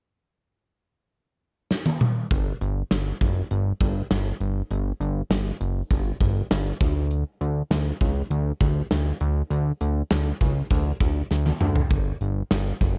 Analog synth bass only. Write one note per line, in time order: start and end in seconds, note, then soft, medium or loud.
2.31 2.53 G1 loud
2.61 2.83 G1 medium
2.91 3.12 G1 loud
3.21 3.43 F#1 medium
3.51 3.73 G1 loud
3.81 4.02 G1 medium
4.11 4.32 G1 loud
4.40 4.62 G1 loud
4.71 4.92 G1 loud
5.00 5.22 G1 loud
5.30 5.52 G1 medium
5.61 5.82 F#1 medium
5.91 6.12 G1 loud
6.20 6.42 G1 medium
6.51 6.72 G1 loud
6.81 7.24 D2 medium
7.41 7.63 D2 medium
7.71 7.92 D2 loud
8.01 8.22 C#2 medium
8.30 8.52 D2 loud
8.61 8.82 D2 medium
8.91 9.12 D2 loud
9.21 9.42 D2 loud
9.50 9.72 D2 loud
9.81 10.02 D2 medium
10.11 10.32 D2 loud
10.41 10.63 C#2 medium
10.71 10.92 D2 loud
11.01 11.22 D2 medium
11.31 11.53 D2 loud
11.61 11.83 D2 loud
11.91 12.12 G1 loud
12.21 12.43 G1 medium
12.51 12.73 G1 loud
12.81 12.98 F#1 medium